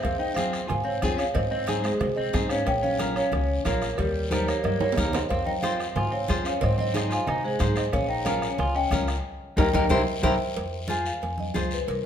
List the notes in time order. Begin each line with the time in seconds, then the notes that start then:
0.02 F2 C4 C5 F5, bombo low, bombo rim, cowbell, long guiro
0.19 D#4 D#5 G5
0.35 C4 F4 G#4 C5 F5, bombo rim, cowbell, high conga, short guiro
0.53 bombo rim, short guiro
0.67 G#2 F4 F5 G#5, bombo rim, cowbell, low conga, long guiro
0.84 C4 C#5 F5
1.02 F2 C4 F4 G#4, bombo low, bombo rim, cowbell, high conga, short guiro
1.17 C#4 C#5 F5, bombo rim, short guiro
1.34 G#2 C4 C5 D#5, bombo low, bombo rim, cowbell, low conga, long guiro
1.51 C4 C5 D#5
1.67 C4 D#4 G#4, bombo rim, cowbell, high conga, short guiro
1.83 G#3 G#4 C5, bombo rim, short guiro
2.00 C3 G#3 G#4 C5, bombo rim, cowbell, low conga, long guiro
2.16 C4 C5 D#5
2.33 G#2 C4 D#4 G#4, bombo low, bombo rim, cowbell, high conga, low timbale, short guiro
2.49 C#4 C#5 F5, bombo rim, short guiro
2.66 A#1 C#4 C#5 G5, bombo low, bombo rim, cowbell, long guiro
2.82 C#4 C#5 F5, high conga
2.98 C#4 F4 A#4, bombo rim, cowbell, high conga, short guiro
3.16 C#4 C#5 F5, bombo rim, short guiro
3.32 C#2, bombo rim, cowbell, low conga, long guiro
3.65 A#1 A#3 C#4 F4 A#4 C#5, bombo low, bombo rim, cowbell, high conga, low timbale, short guiro
3.82 bombo rim, short guiro
3.97 D#2 G3 G4 A#4, bombo low, bombo rim, cowbell, low conga, long guiro
4.30 G3 D#4 G4 A#4 C5, bombo rim, cowbell, high conga, short guiro
4.46 A#3 A#4 C#5, bombo rim, short guiro
4.63 G2 A#3 A#4 D#5, bombo rim, cowbell, high conga, long guiro
4.80 A#3 A#4 C#5, high conga, high timbale
4.92 low timbale
4.96 D#2 D#4 G4 A#4, bombo low, bombo rim, cowbell, low conga, short guiro
5.04 low timbale
5.12 C4 C5 D#5, bombo rim, low conga, low timbale, short guiro
5.29 F2 C4 C5 F5, bombo low, bombo rim, cowbell, long guiro
5.46 D#4 D#5 G5, high conga
5.62 C4 F4 G#4 C5 F5, bombo rim, cowbell, high conga, short guiro
5.80 bombo rim, short guiro
5.96 G#2 F4 F5 G#5, bombo rim, cowbell, low conga, long guiro
6.12 C4 C#5 F5
6.28 F2 F4 G#4 C5, bombo low, bombo rim, cowbell, high conga, short guiro
6.45 C#4 C#5 F5, bombo rim, short guiro
6.61 G#2 C4 C5 D#5, bombo low, bombo rim, cowbell, low conga, long guiro
6.78 C4 C5 D#5, high conga
6.94 D#4 G#4 C5, bombo rim, cowbell, high conga, short guiro
7.10 F4 F5 G#5, bombo rim, short guiro
7.27 C3 D#4 D#5 G#5, bombo rim, cowbell, low conga, long guiro
7.44 G#3 G#4 C5
7.59 G#2 D#4 G#4 C5, bombo low, bombo rim, cowbell, high conga, low conga, short guiro
7.75 C4 C5 D#5, bombo rim, short guiro
7.92 A#1 C#4 C#5 F5, bombo low, bombo rim, cowbell, long guiro
8.08 D#4 D#5 G5
8.25 C#4 F4 A#4 C#5 F5, bombo rim, cowbell, high conga, short guiro
8.42 bombo rim, short guiro
8.58 C#2 F4 F5 G#5, bombo rim, cowbell, low conga, long guiro
8.75 C#4 D#5 G5
8.91 C#2 C#4 F4 A#4, bombo low, bombo rim, cowbell, high conga, short guiro
9.08 bombo rim, short guiro
9.57 D#2 G3 A#3 D#4 G4 A#4 D#5 G5, bombo low, high conga, high timbale, long guiro
9.73 D#2 G3 A#3 D#4 G4 A#4 D#5 G5, bombo low, high conga, high timbale, long guiro
9.89 C2 A#3 C4 E4 G4 A#4 C5 E5 G5, bombo low, high conga, high timbale, long guiro
10.23 C2 A#3 C4 E4 G4 A#4 C5 E5 G5, bombo low, high conga, high timbale
10.55 F2, cowbell, high conga, long guiro
10.88 F4 G#4 C5 G#5, cowbell, high conga, short guiro
11.05 F5, short guiro
11.22 F2 G#5, cowbell, high conga, long guiro
11.38 D#5, high conga
11.54 C#2 F4 G#4 C5, cowbell, high conga, low timbale, short guiro
11.71 B4, short guiro
11.87 C2 A#4, cowbell, high conga, long guiro